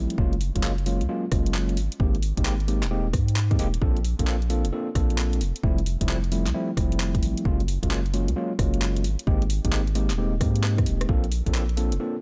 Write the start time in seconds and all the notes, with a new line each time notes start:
Already playing: F3 G3 A3 C4 E4
0.10 closed hi-hat
0.18 F#1 F#3 G#3 A#3 C#4 F4, kick
0.33 closed hi-hat
0.41 open hi-hat
0.56 F#1 F#3 G#3 A#3 C#4 F4, kick, closed hi-hat
0.63 F#3 G#3 A#3 C#4 F4, clap
0.78 closed hi-hat
0.86 F#3 G#3 A#3 C#4 F4, open hi-hat
1.01 C#2, closed hi-hat
1.09 F#3 G#3 A#3 C#4 F4
1.32 F#1 F#3 G#3 A#3 C#4 F4, kick, cross-stick, open hi-hat
1.46 closed hi-hat
1.54 clap
1.69 closed hi-hat
1.77 G#1, open hi-hat
1.92 closed hi-hat
2.00 G#1 G#3 A#3 C4 D#4 G4, kick
2.15 closed hi-hat
2.23 open hi-hat
2.37 G#1 G#3 A#3 C4 D#4 G4, kick, closed hi-hat
2.45 G#3 A#3 C4 D#4 G4, clap
2.60 closed hi-hat
2.68 G#3 A#3 C4 D#4 G4, open hi-hat
2.83 D#1, clap, closed hi-hat
2.91 G#3 A#3 C4 D#4 G4
3.13 G#2, kick, cross-stick, open hi-hat
3.28 closed hi-hat
3.36 clap
3.51 G#3 A#3 C4 D#4 G4, kick, closed hi-hat
3.59 D#1 G#3 A#3 C4 D#4 G4, open hi-hat
3.74 closed hi-hat
3.82 A#1 A#3 C4 D4 F4 A4, kick
3.97 closed hi-hat
4.05 open hi-hat
4.19 A#1 A#3 C4 D4 F4 A4, kick, closed hi-hat
4.27 A#3 C4 D4 F4 A4, clap
4.42 closed hi-hat
4.50 A#3 C4 D4 F4 A4, open hi-hat
4.65 F1, closed hi-hat
4.73 A#3 C4 D4 F4 A4
4.95 A#1 A#3 C4 D4 F4 A4, kick, cross-stick, open hi-hat
5.10 closed hi-hat
5.18 clap
5.33 closed hi-hat
5.41 F1, open hi-hat
5.56 closed hi-hat
5.63 F1 F3 G3 A3 C4 E4, kick
5.78 closed hi-hat
5.86 open hi-hat
6.01 F1 F3 G3 A3 C4 E4, kick, closed hi-hat
6.09 F3 G3 A3 C4 E4, clap
6.24 closed hi-hat
6.32 F3 G3 A3 C4 E4, open hi-hat
6.47 C2, clap, closed hi-hat
6.54 F3 G3 A3 C4 E4
6.77 F1 F3 G3 A3 C4 E4, kick, cross-stick, open hi-hat
6.92 closed hi-hat
7.00 clap
7.15 kick, closed hi-hat
7.22 A1, open hi-hat
7.37 closed hi-hat
7.45 F#1 F#3 G#3 A#3 C#4 F4, kick
7.60 closed hi-hat
7.68 open hi-hat
7.83 F#1 F#3 G#3 A#3 C#4 F4, kick, closed hi-hat
7.91 F#3 G#3 A#3 C#4 F4, clap
8.06 closed hi-hat
8.14 F#3 G#3 A#3 C#4 F4, open hi-hat
8.28 C#2, closed hi-hat
8.36 F#3 G#3 A#3 C#4 F4
8.59 F#1 F#3 G#3 A#3 C#4 F4, kick, cross-stick, open hi-hat
8.74 closed hi-hat
8.82 clap
8.96 closed hi-hat
9.04 G#1, open hi-hat
9.19 closed hi-hat
9.27 G#1 G#3 A#3 C4 D#4 G4, kick
9.42 closed hi-hat
9.50 open hi-hat
9.65 G#1 G#3 A#3 C4 D#4 G4, kick, closed hi-hat
9.72 G#3 A#3 C4 D#4 G4, clap
9.87 closed hi-hat
9.95 G#3 A#3 C4 D#4 G4, cross-stick, open hi-hat
10.10 D#1, clap, closed hi-hat
10.18 G#3 A#3 C4 D#4 G4
10.41 G#2 G#3 A#3 C4 D#4 G4, kick, cross-stick, open hi-hat
10.56 closed hi-hat
10.63 cross-stick, clap
10.78 kick, cross-stick, closed hi-hat
10.86 D#1, open hi-hat
11.01 cross-stick, closed hi-hat
11.09 A#1 A#3 C4 D4 F4 A4, kick
11.24 closed hi-hat
11.32 open hi-hat
11.46 A#1 A#3 C4 D4 F4 A4, kick, closed hi-hat
11.54 A#3 C4 D4 F4 A4, clap
11.69 closed hi-hat
11.77 A#3 C4 D4 F4 A4, open hi-hat
11.92 F1, closed hi-hat
12.00 A#3 C4 D4 F4 A4